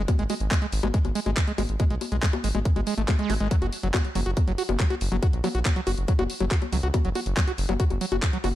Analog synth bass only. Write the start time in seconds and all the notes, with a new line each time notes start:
0.19 G#1
0.40 G#1
0.73 G#1
0.83 G#1
1.05 G#1
1.26 G#1
1.58 G#1
1.69 G#1
1.90 B1
2.12 B1
2.44 G#1
2.55 G#1
2.76 G#1
2.98 G#1
3.30 G#1
3.40 G#1
3.62 F#1
3.83 F#1
4.15 F#1
4.26 F#1
4.48 F#1
4.69 F#1
5.01 F#1
5.12 F#1
5.33 A#1
5.55 A#1
5.87 F#1
5.98 F#1
6.19 F#1
6.40 F#1
6.73 C#2
6.83 C#2
7.05 F#1
7.26 F#1
7.58 F#1
7.69 F#1
7.90 F#1
8.12 F#1
8.44 F#1